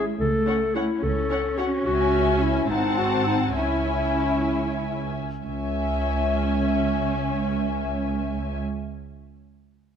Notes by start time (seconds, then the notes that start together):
Already playing: G#3
0.20 C#2 A3 A4
0.47 C#4 C#5 F#5
0.75 C#4 E4 C#5 F#5
1.02 C#2 C#4 A4
1.30 C#4 C#5 F#5
1.58 C#4 F#4 C#5 F#5
1.84 C#2 C#4 F#4 E5 G#5
2.42 E4
2.69 G#1 C4 D#4 F#5 A5
2.98 F#4
3.27 D#4
3.56 C#2 C#4 E4 E5 G#5
5.43 C#2 C#4 E5 G#5